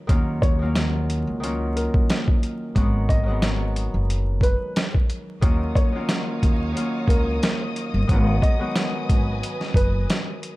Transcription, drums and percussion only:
0.09 kick loud
0.09 closed hi-hat medium
0.42 kick loud
0.42 closed hi-hat medium
0.75 snare loud
0.75 closed hi-hat medium
1.10 closed hi-hat medium
1.43 closed hi-hat medium
1.77 closed hi-hat medium
1.94 kick loud
2.10 snare loud
2.10 closed hi-hat medium
2.28 kick medium
2.43 closed hi-hat medium
2.76 kick loud
2.76 closed hi-hat medium
3.09 kick loud
3.09 closed hi-hat medium
3.42 snare loud
3.42 closed hi-hat medium
3.76 closed hi-hat medium
4.10 closed hi-hat medium
4.41 kick medium
4.41 closed hi-hat medium
4.76 snare loud
4.76 closed hi-hat medium
4.94 kick medium
5.10 closed hi-hat medium
5.42 kick loud
5.42 closed hi-hat medium
5.76 kick loud
5.76 closed hi-hat medium
6.09 snare loud
6.09 closed hi-hat medium
6.43 kick medium
6.43 closed hi-hat medium
6.77 closed hi-hat medium
7.08 kick medium
7.08 closed hi-hat medium
7.43 snare loud
7.43 closed hi-hat medium
7.76 closed hi-hat medium
8.09 kick loud
8.09 closed hi-hat medium
8.42 kick loud
8.42 closed hi-hat medium
8.75 snare loud
8.75 closed hi-hat medium
9.09 kick medium
9.09 closed hi-hat medium
9.43 closed hi-hat medium
9.61 snare soft
9.74 kick medium
9.74 closed hi-hat medium
10.10 snare loud
10.10 closed hi-hat medium
10.43 closed hi-hat medium

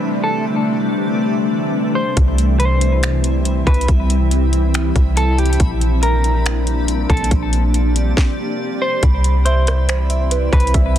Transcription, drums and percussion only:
2.17 kick loud
2.17 closed hi-hat medium
2.38 closed hi-hat medium
2.60 closed hi-hat medium
2.81 closed hi-hat medium
3.03 finger snap loud
3.03 closed hi-hat medium
3.24 closed hi-hat medium
3.45 closed hi-hat medium
3.67 kick medium
3.67 closed hi-hat soft
3.74 closed hi-hat medium
3.81 closed hi-hat medium
3.88 kick loud
3.88 closed hi-hat medium
4.10 closed hi-hat medium
4.31 closed hi-hat medium
4.53 closed hi-hat medium
4.74 finger snap loud
4.74 closed hi-hat medium
4.96 kick medium
4.96 closed hi-hat medium
5.17 closed hi-hat medium
5.38 closed hi-hat soft
5.46 closed hi-hat medium
5.53 closed hi-hat medium
5.60 kick loud
5.60 closed hi-hat medium
5.81 closed hi-hat medium
6.03 closed hi-hat medium
6.24 closed hi-hat medium
6.46 finger snap loud
6.46 closed hi-hat medium
6.67 closed hi-hat medium
6.88 closed hi-hat medium
7.10 kick medium
7.10 closed hi-hat soft
7.17 closed hi-hat medium
7.24 closed hi-hat medium
7.31 kick loud
7.31 closed hi-hat medium
7.53 closed hi-hat medium
7.74 closed hi-hat medium
7.96 closed hi-hat medium
8.17 kick loud
8.17 snare medium
9.03 kick loud
9.03 closed hi-hat medium
9.24 closed hi-hat medium
9.46 closed hi-hat medium
9.67 cross-stick medium
9.67 closed hi-hat medium
9.89 finger snap loud
9.89 closed hi-hat medium
10.10 closed hi-hat medium
10.31 closed hi-hat medium
10.53 kick medium
10.53 closed hi-hat soft
10.60 closed hi-hat medium
10.67 closed hi-hat medium
10.74 kick loud
10.74 closed hi-hat medium

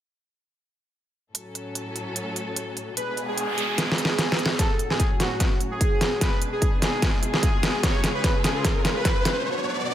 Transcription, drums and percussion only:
1.35 closed hi-hat medium
1.55 closed hi-hat soft
1.75 closed hi-hat medium
1.96 closed hi-hat soft
2.16 closed hi-hat medium
2.36 closed hi-hat soft
2.56 closed hi-hat medium
2.77 closed hi-hat soft
2.97 closed hi-hat medium
3.17 closed hi-hat soft
3.38 closed hi-hat medium
3.58 closed hi-hat soft
3.78 snare medium
3.78 closed hi-hat medium
3.92 snare medium
3.98 closed hi-hat soft
4.05 snare medium
4.19 snare medium
4.19 closed hi-hat medium
4.32 snare medium
4.39 closed hi-hat medium
4.46 snare medium
4.59 kick medium
4.59 snare soft
4.59 closed hi-hat medium
4.79 closed hi-hat medium
4.90 snare soft
5.00 kick medium
5.00 closed hi-hat medium
5.20 snare soft
5.20 closed hi-hat medium
5.40 kick medium
5.40 snare soft
5.40 closed hi-hat medium
5.61 closed hi-hat medium
5.81 kick medium
5.81 closed hi-hat medium
6.01 snare medium
6.01 closed hi-hat medium
6.21 kick loud
6.21 snare medium
6.21 closed hi-hat medium
6.42 closed hi-hat medium
6.62 kick loud
6.62 closed hi-hat medium
6.82 snare medium
6.82 closed hi-hat medium
7.02 kick medium
7.02 snare medium
7.02 closed hi-hat medium
7.23 closed hi-hat medium
7.34 snare medium
7.43 kick loud
7.43 closed hi-hat medium
7.63 snare medium
7.63 closed hi-hat medium
7.83 kick loud
7.83 snare medium
7.83 closed hi-hat medium
8.04 snare medium
8.04 closed hi-hat medium
8.24 kick loud
8.24 snare medium
8.24 closed hi-hat medium
8.44 snare medium
8.44 closed hi-hat medium
8.65 kick loud
8.65 snare medium
8.65 closed hi-hat medium
8.85 snare medium
8.85 closed hi-hat medium
9.05 kick loud
9.05 snare medium
9.05 closed hi-hat medium
9.25 snare medium
9.25 closed hi-hat medium

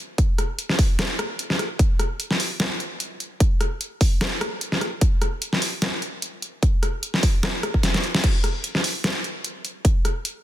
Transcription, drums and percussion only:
0.18 kick loud
0.18 closed hi-hat medium
0.38 cross-stick medium
0.38 closed hi-hat medium
0.59 closed hi-hat medium
0.69 snare soft
0.79 kick loud
0.79 open hi-hat medium
0.99 cross-stick medium
0.99 snare loud
0.99 closed hi-hat medium
1.19 cross-stick medium
1.19 closed hi-hat medium
1.39 closed hi-hat medium
1.50 snare soft
1.59 cross-stick medium
1.59 closed hi-hat medium
1.79 kick loud
1.79 closed hi-hat medium
1.99 cross-stick medium
1.99 closed hi-hat medium
2.20 closed hi-hat medium
2.31 snare soft
2.40 open hi-hat medium
2.60 snare loud
2.60 closed hi-hat medium
2.80 closed hi-hat soft
3.00 closed hi-hat medium
3.20 closed hi-hat soft
3.40 kick loud
3.40 closed hi-hat medium
3.61 cross-stick medium
3.61 closed hi-hat medium
3.81 closed hi-hat medium
4.01 kick loud
4.01 open hi-hat medium
4.21 cross-stick medium
4.21 snare loud
4.21 closed hi-hat medium
4.41 cross-stick medium
4.41 closed hi-hat soft
4.61 closed hi-hat medium
4.72 snare soft
4.81 cross-stick medium
4.81 closed hi-hat soft
5.01 kick loud
5.01 closed hi-hat medium
5.22 cross-stick medium
5.22 closed hi-hat medium
5.42 closed hi-hat medium
5.53 snare soft
5.62 open hi-hat loud
5.82 snare loud
5.82 closed hi-hat medium
6.02 closed hi-hat soft
6.22 closed hi-hat medium
6.42 closed hi-hat medium
6.63 kick loud
6.63 closed hi-hat medium
6.83 cross-stick medium
6.83 closed hi-hat medium
7.03 closed hi-hat medium
7.14 snare soft
7.23 kick loud
7.23 open hi-hat loud
7.43 cross-stick medium
7.43 snare loud
7.43 closed hi-hat medium
7.63 cross-stick medium
7.63 closed hi-hat soft
7.74 kick medium
7.83 snare medium
7.83 closed hi-hat medium
7.94 snare medium
7.94 closed hi-hat soft
8.04 closed hi-hat medium
8.15 snare medium
8.24 kick loud
8.24 closed hi-hat medium
8.24 crash medium
8.44 cross-stick medium
8.44 closed hi-hat medium
8.64 closed hi-hat medium
8.75 snare soft
8.84 open hi-hat loud
9.04 snare loud
9.04 closed hi-hat medium
9.24 closed hi-hat medium
9.44 closed hi-hat medium
9.65 closed hi-hat medium
9.85 kick loud
9.85 closed hi-hat medium
10.05 cross-stick soft
10.05 closed hi-hat medium
10.25 closed hi-hat medium

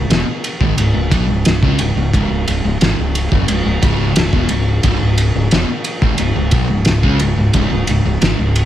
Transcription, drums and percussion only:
0.10 snare loud
0.10 ride medium
0.44 ride medium
0.61 kick loud
0.78 ride medium
1.12 kick loud
1.12 ride medium
1.45 snare loud
1.45 ride medium
1.63 kick loud
1.79 ride medium
2.14 kick loud
2.14 ride medium
2.48 ride medium
2.81 snare loud
2.81 ride medium
3.15 ride medium
3.32 kick loud
3.48 ride loud
3.83 kick loud
3.83 ride medium
4.16 snare loud
4.16 ride loud
4.33 kick loud
4.49 ride medium
4.83 kick loud
4.83 ride loud
5.18 ride medium
5.51 snare loud
5.51 ride medium
5.84 ride medium
6.02 kick loud
6.18 ride loud
6.51 kick loud
6.51 ride medium
6.85 snare loud
6.85 ride medium
7.03 kick loud
7.19 ride medium
7.53 kick loud
7.53 ride medium
7.87 ride medium
8.22 snare loud
8.22 ride medium
8.56 ride medium

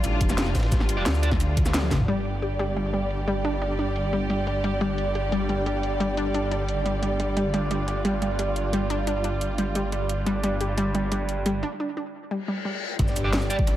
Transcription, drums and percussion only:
0.04 closed hi-hat medium
0.04 ride medium
0.04 shaker medium
0.20 kick loud
0.20 closed hi-hat loud
0.20 ride medium
0.29 snare medium
0.29 snare soft
0.29 shaker medium
0.38 snare loud
0.38 closed hi-hat medium
0.38 ride medium
0.38 shaker medium
0.46 snare soft
0.55 kick medium
0.55 snare medium
0.55 open hi-hat medium
0.55 ride medium
0.55 shaker soft
0.59 snare medium
0.59 ride medium
0.63 snare loud
0.63 ride medium
0.72 kick loud
0.72 snare loud
0.72 closed hi-hat medium
0.72 ride medium
0.72 shaker medium
0.80 snare soft
0.89 closed hi-hat loud
0.89 ride medium
0.89 shaker soft
1.06 snare loud
1.06 closed hi-hat medium
1.06 ride loud
1.06 shaker medium
1.14 shaker soft
1.23 closed hi-hat loud
1.23 ride medium
1.23 shaker soft
1.32 kick loud
1.32 snare medium
1.40 closed hi-hat medium
1.40 ride medium
1.40 shaker soft
1.57 kick loud
1.57 closed hi-hat loud
1.57 ride medium
1.65 snare medium
1.65 snare soft
1.65 shaker medium
1.74 snare loud
1.74 closed hi-hat medium
1.74 ride medium
1.74 shaker medium
1.83 high tom medium
1.91 kick medium
1.91 snare soft
1.91 snare loud
1.91 snare soft
1.91 open hi-hat medium
1.91 mid tom medium
1.91 ride medium
1.91 shaker soft
2.00 mid tom medium
2.08 closed hi-hat medium
2.25 closed hi-hat medium
2.42 closed hi-hat medium
2.59 closed hi-hat medium
2.76 closed hi-hat medium
2.94 closed hi-hat medium
3.11 closed hi-hat medium
3.28 closed hi-hat medium
3.45 closed hi-hat medium
3.62 closed hi-hat medium
3.79 closed hi-hat medium
3.96 closed hi-hat medium
4.13 closed hi-hat medium
4.30 closed hi-hat medium
4.47 closed hi-hat medium
4.64 closed hi-hat medium
4.81 closed hi-hat medium
4.98 closed hi-hat medium
5.15 closed hi-hat medium
5.32 closed hi-hat medium
5.49 closed hi-hat medium
5.66 closed hi-hat medium
5.83 closed hi-hat medium
6.00 closed hi-hat medium
6.17 closed hi-hat medium
6.34 closed hi-hat medium
6.51 closed hi-hat medium
6.69 closed hi-hat medium
6.86 closed hi-hat medium
7.03 closed hi-hat medium
7.20 closed hi-hat medium
7.37 closed hi-hat medium
7.54 closed hi-hat medium
7.71 closed hi-hat medium
7.88 closed hi-hat medium
8.05 closed hi-hat medium
8.22 closed hi-hat medium
8.39 closed hi-hat medium
8.56 closed hi-hat medium
8.73 closed hi-hat medium
8.90 closed hi-hat medium
9.07 closed hi-hat medium
9.24 closed hi-hat medium
9.41 closed hi-hat medium
9.58 closed hi-hat medium
9.75 closed hi-hat medium
9.92 closed hi-hat medium
10.09 closed hi-hat medium
10.27 closed hi-hat medium
10.44 closed hi-hat medium
10.61 closed hi-hat medium
10.78 closed hi-hat medium
10.95 closed hi-hat medium
11.12 closed hi-hat medium
11.29 closed hi-hat medium
11.46 closed hi-hat medium
12.99 kick loud
12.99 closed hi-hat medium
12.99 ride medium
13.07 snare soft
13.07 shaker soft
13.16 closed hi-hat medium
13.16 ride medium
13.16 shaker medium
13.33 snare loud
13.33 closed hi-hat medium
13.33 ride medium
13.42 shaker soft
13.50 closed hi-hat loud
13.50 ride medium
13.50 shaker medium
13.59 kick loud
13.67 closed hi-hat medium
13.67 ride medium

